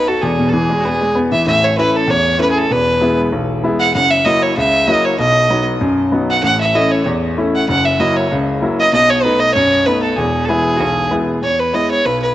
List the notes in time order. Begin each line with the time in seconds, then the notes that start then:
Already playing: B1 B2
0.08 F#4 A4
0.22 E1 E2 G#4
0.39 B2
0.49 G#4 A4
0.54 E3
0.70 G#3
0.80 F#4 G#4
0.85 B3
1.01 G#3
1.15 B3
1.32 E3 E5
1.47 A1 A2 E5
1.64 C#5
1.78 A3 C#4 E4 B4
1.90 B4
1.96 A4
2.08 E2 C#5
2.38 A3 C#4 E4 B4
2.51 G#4
2.58 A4
2.71 E1 E2 B4
3.01 G#3 B3 E4
3.33 B1
3.63 G#3 B3 E4
3.80 F#5
3.94 F#1 F#2 F#5
4.11 E5
4.25 F#3 A#3 E4 D#5
4.42 C#5
4.57 C#2 E5
4.87 F#3 A#3 E4 D#5
5.05 C#5
5.19 B1 B2 D#5
5.50 F#3 B3 D#4
5.81 F#2
6.12 F#3 B3 D#4
6.30 F#5
6.43 A1 A2 F#5
6.61 E5
6.74 A3 C#4 E4 D#5
6.91 C#5
7.06 E2
7.37 A3 C#4 E4
7.55 F#5
7.68 F#1 F#2 F#5
7.85 E5
8.00 F#3 A#3 E4 D#5
8.16 C#5
8.31 C#2
8.62 F#3 A#3 E4
8.80 D#5
8.93 B1 B2 D#5
9.10 C#5
9.24 A3 B3 D#4 B4
9.40 D#5
9.54 F#2 C#5
9.86 A3 B3 D#4 B4
10.03 A4
10.17 E1 E2 G#4
10.45 G#3 G#4 A4
10.49 B3 E4
10.76 F#4 G#4
10.80 B1
11.11 G#3 B3 E4
11.42 E2 C#5
11.59 B4
11.73 G#3 B3 E4 D#5
11.91 C#5
12.06 B1 B4
12.22 B4